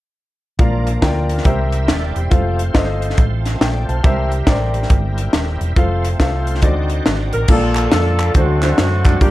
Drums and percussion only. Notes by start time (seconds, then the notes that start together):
0.59 kick, closed hi-hat
0.87 closed hi-hat
1.02 kick, snare, closed hi-hat
1.29 closed hi-hat
1.38 snare
1.45 kick, closed hi-hat
1.72 closed hi-hat
1.88 snare, closed hi-hat
2.16 closed hi-hat
2.31 kick, closed hi-hat
2.59 closed hi-hat
2.74 kick, snare, closed hi-hat
3.02 closed hi-hat
3.10 snare
3.18 kick, closed hi-hat
3.46 snare, closed hi-hat
3.61 snare, closed hi-hat
3.89 closed hi-hat
4.04 kick, closed hi-hat
4.32 closed hi-hat
4.47 kick, snare, closed hi-hat
4.74 closed hi-hat
4.83 snare
4.90 kick, closed hi-hat
5.18 closed hi-hat
5.33 snare, closed hi-hat
5.61 closed hi-hat
5.76 kick, closed hi-hat
6.04 closed hi-hat
6.20 kick, snare, closed hi-hat
6.47 closed hi-hat
6.55 snare
6.62 kick, closed hi-hat
6.90 closed hi-hat
7.06 snare, closed hi-hat
7.33 closed hi-hat
7.48 kick, crash
7.75 clap, closed hi-hat
7.92 snare, closed hi-hat
8.19 clap, closed hi-hat
8.35 kick, closed hi-hat
8.62 snare, clap, closed hi-hat
8.78 snare, closed hi-hat
9.05 kick, clap, closed hi-hat
9.21 kick, closed hi-hat